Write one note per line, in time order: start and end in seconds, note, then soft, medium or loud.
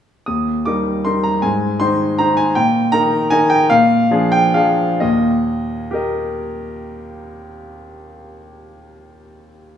0.26 0.65 D#2 soft
0.26 0.66 D#6 medium
0.65 1.02 G3 soft
0.65 1.02 D#4 soft
0.65 1.02 A#4 soft
0.65 1.05 D6 medium
1.05 1.40 G3 soft
1.05 1.40 D#4 soft
1.05 1.40 A#4 soft
1.05 1.24 C6 medium
1.24 1.43 A#5 medium
1.42 1.79 G#2 soft
1.42 1.80 G#5 medium
1.80 2.15 D#3 soft
1.80 2.16 D#4 soft
1.80 2.16 C5 soft
1.80 2.19 C6 medium
2.18 2.53 D#3 soft
2.18 2.53 D#4 soft
2.18 2.53 C5 soft
2.18 2.38 A#5 medium
2.37 2.56 G#5 medium
2.55 2.92 A#2 medium
2.55 2.92 G5 medium
2.92 3.28 D#3 soft
2.92 3.28 D#4 medium
2.92 3.28 A#4 medium
2.92 3.31 A#5 medium
3.30 3.66 D#3 medium
3.30 3.66 D#4 medium
3.30 3.67 A#4 medium
3.30 3.51 G#5 loud
3.50 3.70 G5 medium
3.70 4.09 A#2 medium
3.70 4.32 F5 medium
4.11 4.51 F3 medium
4.11 4.51 D4 medium
4.11 4.51 G#4 medium
4.32 4.55 G5 medium
4.54 4.97 F3 soft
4.54 4.97 D4 medium
4.54 4.98 G#4 medium
4.54 5.01 F5 medium
5.00 9.13 D#2 medium
5.00 9.13 A#2 medium
5.00 5.93 D#5 medium
5.91 9.13 G4 soft
5.91 9.15 A#4 soft
5.91 9.15 D#5 soft